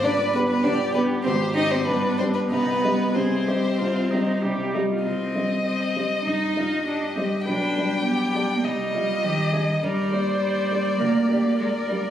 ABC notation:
X:1
M:4/4
L:1/16
Q:1/4=100
K:Cm
V:1 name="Violin"
d2 =B B d2 B2 c2 e c B2 c B | =B4 c8 z4 | e16 | g8 e8 |
d16 |]
V:2 name="Viola"
=B4 G8 D4 | E4 A2 G2 F2 E2 G2 E F | z8 E2 F2 G4 | =B4 G2 D2 E2 F2 G2 A2 |
B2 c6 B2 G2 B4 |]
V:3 name="Grand piano"
[G,,,G,,]2 [=B,DG]2 [G,,,G,,]2 [B,DG]2 [A,,,A,,]2 [CEc]2 [G,,,G,,]2 [G,Gd]2 | [C,,C,]2 [G,Ge]2 [C,,C,]2 [G,Ge]2 [C,,C,]2 [G,Ge]2 [C,,C,]2 [G,Ge]2 | C,,2 [G,Ge]4 [G,Ge]2 G,,2 [G,Ge]4 [G,Ge]2 | =B,,,2 [G,Gd]4 [G,Gd]2 C,,2 [G,Ge]4 [G,Ge]2 |
G,,2 [B,Gd]4 [B,Gd]2 D,,2 [B,Gd]4 [B,Gd]2 |]
V:4 name="Cello"
D2 =B, B, D2 B,2 C2 E C B,2 C B, | =B,4 C8 G,4 | C4 C4 E4 D2 C2 | D4 =B,4 G,4 E,4 |
G,4 G,4 B,4 A,2 G,2 |]